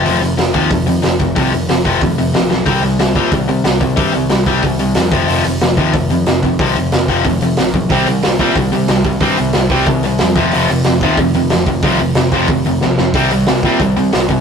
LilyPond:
<<
  \new Staff \with { instrumentName = "Distorted electric guitar" } { \clef bass \time 4/4 \key f \dorian \tempo 4 = 183 <f, c f>8 <f, c>8 <f, c>8 <f, c f>8 <f, c>8 <f, c>8 <f, c>8 <f, c>8 | <f, c f>8 <f, c>8 <f, c>8 <f, c f>8 <f, c>8 <f, c>8 <f, c>8 <f, c>8 | <c g c'>8 <c g>8 <c g>8 <c g c'>8 <c g>8 <c g>8 <c g>8 <c g>8 | <c g c'>8 <c g>8 <c g>8 <c g c'>8 <c g>8 <c g>8 <c g>8 <f, c f>8 |
<f, c f>8 <f, c>8 <f, c>8 <f, c f>8 <f, c>8 <f, c>8 <f, c>8 <f, c>8 | <f, c f>8 <f, c>8 <f, c>8 <f, c f>8 <f, c>8 <f, c>8 <f, c>8 <f, c>8 | <c g c'>8 <c g>8 <c g>8 <c g c'>8 <c g>8 <c g>8 <c g>8 <c g>8 | <c g c'>8 <c g>8 <c g>8 <c g c'>8 <c g>8 <c g>8 <c g>8 <f, c f>8 |
<f, c f>8 <f, c>8 <f, c>8 <f, c f>8 <f, c>8 <f, c>8 <f, c>8 <f, c>8 | <f, c f>8 <f, c>8 <f, c>8 <f, c f>8 <f, c>8 <f, c>8 <f, c>8 <f, c>8 | <c g c'>8 <c g>8 <c g>8 <c g c'>8 <c g>8 <c g>8 <c g>8 <c g>8 | }
  \new Staff \with { instrumentName = "Overdriven electric guitar" } { \clef bass \time 4/4 \key f \dorian r1 | r1 | r1 | r1 |
r1 | r1 | <c g c'>8 <c g>8 <c g>8 <c g c'>8 <c g>8 <c g>8 <c g>8 <c g>8 | <c g c'>8 <c g>8 <c g>8 <c g c'>8 <c g>8 <c g>8 <c g>8 <f, c f>8 |
<f, c f>8 <f, c>8 <f, c>8 <f, c f>8 <f, c>8 <f, c>8 <f, c>8 <f, c>8 | <f, c f>8 <f, c>8 <f, c>8 <f, c f>8 <f, c>8 <f, c>8 <f, c>8 <f, c>8 | <c g c'>8 <c g>8 <c g>8 <c g c'>8 <c g>8 <c g>8 <c g>8 <c g>8 | }
  \new Staff \with { instrumentName = "Picked electric bass" } { \clef bass \time 4/4 \key f \dorian f,,8 f,,8 f,,8 ees,8 f,,8 f,8 f,,8 f,,8 | c,8 f,,8 f,,4 f,,8 f,,8 bes,,8 b,,8 | c,8 c,8 c,8 bes,8 c,8 c8 c,8 c,8 | g,8 c,8 c,4 c,8 c,8 f,8 f,,8 |
f,,8 f,,8 f,,8 ees,8 f,,8 f,8 f,,8 f,,8 | c,8 f,,8 f,,4 f,,8 f,,8 bes,,8 b,,8 | c,8 c,8 c,8 bes,8 c,8 c8 c,8 c,8 | g,8 c,8 c,4 c,8 c,8 f,8 f,,8 |
f,,8 f,,8 f,,8 ees,8 f,,8 f,8 f,,8 f,,8 | c,8 f,,8 f,,4 f,,8 f,,8 bes,,8 f,,8 | c,8 c,8 c,8 bes,8 c,8 c8 c,8 c,8 | }
  \new DrumStaff \with { instrumentName = "Drums" } \drummode { \time 4/4 hho8 hho8 <hho sn>8 <hho bd>8 <hho bd>8 hho8 <hho sn>8 <hho bd>8 | <hho bd>8 hho8 <hho sn>8 <hho bd>8 <hho bd>8 hho8 <hho sn>8 sn8 | <hho bd>8 hho8 <hho sn>8 <hho bd>8 <hho bd>8 hho8 <hho sn>8 <hho bd>8 | <hho bd>8 hho8 <hho sn>8 <hho bd>8 <hho bd>8 hho8 <hho sn>8 <hho bd>8 |
hho8 hho8 <hho sn>8 <hho bd>8 <hho bd>8 hho8 <hho sn>8 <hho bd>8 | <hho bd>8 hho8 <hho sn>8 <hho bd>8 <hho bd>8 hho8 <hho sn>8 <hho bd>8 | <hho bd>8 hho8 <hho sn>8 <hho bd>8 <hho bd>8 hho8 <hho sn>8 <hho bd>8 | <hho bd>8 hho8 <hho sn>8 <hho bd>8 <hho bd>8 hho8 <hho sn>8 <hho bd>8 |
hho8 hho8 <hho sn>8 <hho bd>8 <hho bd>8 hho8 <hho sn>8 <hho bd>8 | <hho bd>8 hho8 <hho sn>8 <hho bd>8 <hho bd>8 hho8 sn8 sn8 | <hho bd>8 hho8 <hho sn>8 <hho bd>8 <hho bd>8 hho8 <hho sn>8 <hho bd>8 | }
>>